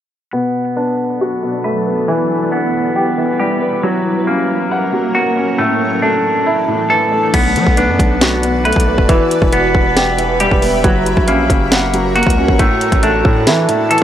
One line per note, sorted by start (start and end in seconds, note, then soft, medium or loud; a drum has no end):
0.33 1.41 B2 medium
0.33 2.06 F#3 medium
0.33 3.80 B3 medium
0.33 2.08 B3 medium
0.33 2.06 D4 medium
0.33 2.06 A4 medium
0.76 1.85 B3 medium
0.76 2.08 D4 medium
1.21 2.08 F#4 loud
1.43 2.08 B2 medium
1.64 2.08 A3 medium
1.64 2.08 B4 medium
1.87 2.08 B3 medium
2.08 3.16 E3 medium
2.08 3.83 E3 medium
2.08 3.82 G3 medium
2.08 3.82 E4 medium
2.08 3.82 B4 medium
2.51 3.60 B3 medium
2.51 3.83 B3 medium
2.96 3.83 G4 loud
3.18 3.83 E3 medium
3.40 3.84 G3 medium
3.40 3.83 G4 medium
3.61 3.83 B3 medium
3.83 4.91 F#3 loud
3.83 5.59 F#3 loud
3.83 5.57 F#3 medium
3.83 5.57 A#3 medium
3.83 5.57 C#4 medium
3.83 5.57 A#4 medium
4.27 5.58 A#3 medium
4.27 5.35 C#4 medium
4.71 5.59 F#5 loud
4.93 5.59 F#3 medium
5.15 5.59 A#3 medium
5.15 5.59 F#4 medium
5.36 5.58 C#4 medium
5.58 6.66 A2 medium
5.58 7.32 E3 medium
5.58 7.34 A3 loud
5.58 7.32 A3 medium
5.58 7.32 D4 medium
5.58 7.32 A4 medium
6.02 7.10 A3 medium
6.02 7.33 D4 medium
6.46 7.34 E4 loud
6.68 7.34 A2 medium
6.90 7.34 E3 medium
6.90 7.34 A4 medium
7.12 7.34 A3 medium
7.34 7.57 B1 loud
7.34 8.42 B2 medium
7.34 9.09 B3 medium
7.34 9.07 F#4 medium
7.34 10.81 B4 medium
7.34 9.07 D5 medium
7.34 9.07 A5 medium
7.34 kick loud
7.34 closed hi-hat medium
7.34 crash loud
7.56 7.66 F#3 loud
7.56 closed hi-hat medium
7.67 7.90 B1 loud
7.67 kick loud
7.77 8.86 B3 medium
7.77 9.09 D4 medium
7.77 closed hi-hat medium
7.88 7.99 F#2 loud
7.99 8.73 B1 loud
7.99 kick loud
7.99 closed hi-hat medium
8.21 9.09 F#4 loud
8.21 snare loud
8.21 closed hi-hat medium
8.43 9.09 B2 medium
8.43 closed hi-hat medium
8.65 9.09 A3 medium
8.65 9.09 B4 medium
8.65 closed hi-hat medium
8.72 8.97 B1 loud
8.72 kick medium
8.72 closed hi-hat medium
8.80 closed hi-hat medium
8.87 9.09 B3 medium
8.98 9.19 E1 loud
8.98 kick medium
9.09 10.17 E3 loud
9.09 10.84 E3 medium
9.09 10.82 G4 medium
9.09 10.82 E5 medium
9.09 10.82 B5 medium
9.09 kick loud
9.09 closed hi-hat medium
9.31 closed hi-hat medium
9.42 9.73 E1 loud
9.42 kick medium
9.52 10.60 B3 medium
9.52 10.84 B3 medium
9.52 closed hi-hat medium
9.75 10.48 E1 loud
9.75 kick loud
9.96 10.84 G4 loud
9.96 snare loud
9.96 closed hi-hat medium
10.18 10.84 E3 medium
10.18 closed hi-hat medium
10.40 10.84 G3 medium
10.40 10.84 G4 medium
10.40 closed hi-hat medium
10.51 10.83 E1 loud
10.51 kick medium
10.62 10.84 B3 medium
10.62 open hi-hat medium
10.84 11.16 F#1 loud
10.84 11.92 F#3 loud
10.84 12.59 F#3 loud
10.84 12.57 F#4 medium
10.84 12.57 A#4 medium
10.84 12.58 C#5 medium
10.84 12.58 A#5 medium
10.84 kick loud
10.84 closed hi-hat medium
11.06 closed hi-hat medium
11.17 11.48 A#1 loud
11.17 kick loud
11.28 12.59 A#3 medium
11.28 12.35 C#4 medium
11.28 closed hi-hat medium
11.50 12.23 F#1 loud
11.50 kick loud
11.50 closed hi-hat medium
11.72 12.59 F#5 loud
11.72 snare loud
11.72 closed hi-hat medium
11.94 12.59 F#3 medium
11.94 closed hi-hat medium
12.15 12.59 A#3 medium
12.15 12.59 F#4 loud
12.15 closed hi-hat medium
12.23 12.48 C#2 loud
12.23 kick loud
12.23 closed hi-hat medium
12.30 closed hi-hat medium
12.37 12.59 C#4 medium
12.48 12.69 A1 loud
12.48 kick medium
12.59 13.67 A2 loud
12.59 14.03 A3 loud
12.59 14.03 E4 medium
12.59 14.03 A4 medium
12.59 14.03 D5 medium
12.59 14.03 A5 medium
12.59 kick loud
12.59 closed hi-hat medium
12.81 closed hi-hat medium
12.92 13.24 A1 loud
12.92 kick loud
12.92 closed hi-hat medium
13.03 14.03 A3 medium
13.03 14.03 D4 medium
13.03 closed hi-hat medium
13.25 13.48 A2 loud
13.25 kick loud
13.47 13.68 E3 loud
13.47 14.03 E4 loud
13.47 snare loud
13.47 closed hi-hat medium
13.68 14.03 A2 medium
13.68 closed hi-hat medium
13.91 14.03 E3 medium
13.91 14.03 A4 medium
13.91 closed hi-hat medium
13.98 closed hi-hat medium